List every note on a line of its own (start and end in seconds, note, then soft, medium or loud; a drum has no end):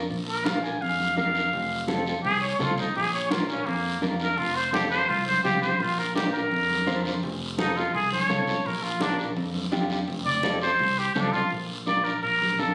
0.10 0.67 A#1 medium
0.10 high conga soft
0.10 long guiro medium
0.28 0.47 A#4 medium
0.28 high conga soft
0.45 0.70 D4 medium
0.45 0.71 F4 medium
0.45 0.71 A#4 medium
0.45 0.63 F5 medium
0.45 high conga loud
0.45 short guiro medium
0.63 0.83 G#5 medium
0.63 short guiro medium
0.82 1.10 F2 medium
0.82 1.16 F5 loud
0.82 long guiro medium
0.99 high conga medium
1.16 1.46 F2 medium
1.16 1.42 D4 medium
1.16 1.42 F4 medium
1.16 1.42 A#4 medium
1.16 1.87 F5 loud
1.16 high conga medium
1.16 short guiro medium
1.35 short guiro medium
1.53 2.10 F1 loud
1.53 high conga soft
1.53 long guiro medium
1.71 high conga soft
1.87 2.13 C4 medium
1.87 2.13 F4 medium
1.87 2.13 A4 medium
1.87 high conga medium
1.87 short guiro medium
2.07 short guiro medium
2.24 2.53 C2 medium
2.24 2.41 G#4 loud
2.24 long guiro medium
2.41 2.59 C#5 medium
2.59 2.88 C2 medium
2.59 2.84 C4 medium
2.59 2.85 F4 medium
2.59 2.77 F4 medium
2.59 2.85 A4 medium
2.59 high conga medium
2.59 low conga medium
2.59 short guiro medium
2.78 2.95 D#4 medium
2.78 high conga medium
2.78 short guiro medium
2.96 3.53 A#1 medium
2.96 3.13 G#4 loud
2.96 high conga soft
2.96 long guiro medium
3.14 3.32 C#5 medium
3.14 high conga soft
3.30 3.56 D4 medium
3.30 3.56 F4 medium
3.30 3.48 F4 medium
3.30 3.56 A#4 medium
3.30 high conga loud
3.30 short guiro medium
3.49 3.67 C#4 medium
3.49 short guiro medium
3.66 3.95 F2 medium
3.66 4.01 A#3 loud
3.66 long guiro medium
4.02 4.31 F2 medium
4.02 4.27 D4 medium
4.02 4.27 F4 medium
4.02 4.27 A#4 medium
4.02 high conga medium
4.02 short guiro medium
4.20 4.39 A#4 loud
4.20 short guiro medium
4.38 4.95 F1 medium
4.38 4.57 F4 medium
4.38 high conga soft
4.38 long guiro medium
4.56 4.72 C5 medium
4.56 high conga soft
4.72 4.98 C4 medium
4.72 4.98 F4 medium
4.72 4.90 G4 medium
4.72 4.98 A4 medium
4.72 high conga loud
4.72 short guiro medium
4.90 5.10 C5 loud
4.90 short guiro medium
5.09 5.38 C2 medium
5.09 5.26 F4 medium
5.09 long guiro medium
5.27 5.43 C5 medium
5.27 high conga medium
5.44 5.73 C2 medium
5.44 5.69 C4 medium
5.44 5.69 F4 medium
5.44 5.62 G4 medium
5.44 5.70 G4 medium
5.44 high conga medium
5.44 low conga medium
5.44 short guiro medium
5.62 5.82 C5 medium
5.62 high conga medium
5.62 short guiro medium
5.80 6.37 A#1 loud
5.80 6.00 F4 medium
5.80 high conga soft
5.80 long guiro medium
5.99 6.15 A#4 medium
5.99 high conga soft
6.15 6.40 D4 medium
6.15 6.41 F4 medium
6.15 6.33 G4 medium
6.15 6.41 A#4 medium
6.15 high conga loud
6.15 short guiro medium
6.33 7.20 A#4 medium
6.33 short guiro medium
6.51 6.80 F2 medium
6.51 long guiro medium
6.70 high conga medium
6.86 7.16 F2 medium
6.86 7.12 D4 medium
6.86 7.12 F4 medium
6.86 7.12 C5 loud
6.86 high conga medium
6.86 short guiro medium
7.05 high conga medium
7.05 short guiro medium
7.23 7.80 F1 loud
7.23 high conga soft
7.23 long guiro medium
7.41 high conga soft
7.58 7.83 C4 medium
7.58 7.78 D#4 medium
7.58 7.83 F4 medium
7.58 7.83 A4 medium
7.58 high conga loud
7.58 short guiro medium
7.77 7.94 F4 medium
7.77 short guiro medium
7.94 8.22 C2 medium
7.94 8.12 G#4 loud
7.94 long guiro medium
8.12 8.68 C#5 loud
8.12 high conga medium
8.29 8.58 C2 medium
8.29 8.54 C4 medium
8.29 8.54 F4 medium
8.29 8.55 A4 medium
8.29 high conga medium
8.29 low conga medium
8.29 short guiro medium
8.47 high conga medium
8.47 short guiro medium
8.65 9.22 A#1 medium
8.65 8.85 A#4 medium
8.65 high conga soft
8.65 long guiro medium
8.83 9.03 F4 medium
8.83 high conga soft
9.00 9.26 D4 medium
9.00 9.19 D4 medium
9.00 9.26 F4 medium
9.00 9.26 A#4 medium
9.00 high conga loud
9.00 short guiro medium
9.19 short guiro medium
9.37 9.65 F2 loud
9.37 long guiro medium
9.54 high conga medium
9.72 10.01 F2 medium
9.72 9.97 D4 medium
9.72 9.97 F4 medium
9.72 9.98 G4 loud
9.72 high conga medium
9.72 short guiro medium
9.90 high conga medium
9.90 short guiro medium
10.08 10.65 F1 loud
10.08 high conga soft
10.08 long guiro medium
10.25 10.60 D5 medium
10.25 high conga soft
10.25 low conga medium
10.43 10.69 C4 medium
10.43 10.69 F4 medium
10.43 10.69 A4 medium
10.43 high conga loud
10.43 short guiro medium
10.62 11.00 C5 medium
10.62 short guiro medium
10.79 11.08 C2 loud
10.79 long guiro medium
10.99 11.14 G4 medium
11.15 11.44 C2 medium
11.15 11.40 C4 medium
11.15 11.34 D4 medium
11.15 11.41 F4 medium
11.15 11.41 A4 medium
11.15 high conga medium
11.15 low conga medium
11.15 short guiro medium
11.33 11.50 F4 loud
11.33 high conga medium
11.33 short guiro medium
11.50 12.09 A#1 medium
11.50 long guiro medium
11.86 12.12 D4 medium
11.86 12.12 F4 medium
11.86 12.12 A#4 medium
11.86 12.06 D5 medium
11.86 high conga medium
11.86 short guiro medium
12.04 12.22 A#4 medium
12.04 short guiro medium
12.23 12.52 A#1 medium
12.23 12.61 A#4 loud
12.23 long guiro medium
12.41 high conga medium
12.59 12.74 F2 medium
12.59 12.74 D4 medium
12.59 12.74 F4 medium
12.59 12.74 A4 medium
12.59 12.74 A#4 medium
12.59 high conga medium
12.59 short guiro medium